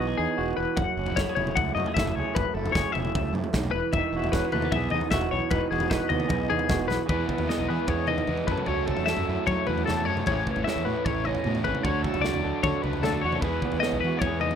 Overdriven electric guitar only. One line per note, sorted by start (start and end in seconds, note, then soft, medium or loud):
7.09 7.47 E3 medium
7.09 7.48 G#3 loud
7.09 7.49 B3 medium
7.09 7.50 E4 medium
7.48 8.27 E3 medium
7.48 8.08 G#3 medium
7.48 8.07 B3 loud
7.48 8.06 E4 loud
8.07 8.27 G#3 medium
8.07 8.28 B3 medium
8.07 8.30 E4 medium
8.28 8.50 E3 medium
8.28 8.47 G#3 medium
8.28 8.48 B3 medium
8.28 8.47 E4 medium
8.47 8.66 F#3 medium
8.47 8.68 A3 medium
8.47 8.68 C#4 medium
8.47 8.69 F#4 medium
8.67 9.06 F#3 medium
8.67 9.08 A3 medium
8.67 9.09 C#4 medium
8.67 9.09 F#4 loud
9.07 9.86 F#3 medium
9.07 9.70 A3 loud
9.07 9.68 C#4 medium
9.07 9.65 F#4 loud
9.66 9.88 A3 medium
9.66 9.88 C#4 medium
9.66 9.89 F#4 medium
9.87 10.25 F#3 medium
9.87 10.09 A3 medium
9.87 10.07 C#4 medium
9.87 10.05 F#4 medium
10.06 10.28 A3 medium
10.06 10.28 C#4 medium
10.06 10.25 F#4 medium
10.27 10.64 A2 medium
10.27 10.65 E3 medium
10.27 10.68 A3 medium
10.27 10.68 C#4 loud
10.27 10.68 E4 loud
10.65 11.45 A2 loud
10.65 11.44 E3 medium
10.65 11.26 A3 loud
10.65 11.25 C#4 loud
10.65 11.24 E4 loud
11.25 11.45 A3 medium
11.25 11.46 C#4 medium
11.25 11.47 E4 medium
11.45 11.83 E3 medium
11.45 11.67 A3 medium
11.45 11.65 C#4 medium
11.45 11.63 E4 medium
11.64 11.84 A3 medium
11.64 11.84 C#4 medium
11.64 11.83 E4 medium
11.84 12.21 D3 medium
11.84 12.23 A3 medium
11.84 12.24 D4 medium
11.84 12.24 F#4 medium
12.22 13.01 D3 loud
12.22 12.84 A3 medium
12.22 12.83 D4 loud
12.22 12.81 F#4 loud
12.82 13.03 A3 medium
12.82 13.03 D4 medium
12.82 13.04 F#4 medium
13.03 13.41 D3 medium
13.03 13.24 A3 medium
13.03 13.22 D4 medium
13.03 13.21 F#4 medium
13.22 13.42 A3 medium
13.22 13.42 D4 medium
13.22 13.41 F#4 medium
13.41 13.80 E3 medium
13.41 13.81 G#3 medium
13.41 13.82 B3 medium
13.41 13.83 E4 medium
13.81 14.55 E3 medium
13.81 14.42 G#3 loud
13.81 14.41 B3 loud
13.81 14.40 E4 medium
14.40 14.55 G#3 medium
14.40 14.55 B3 medium
14.40 14.55 E4 medium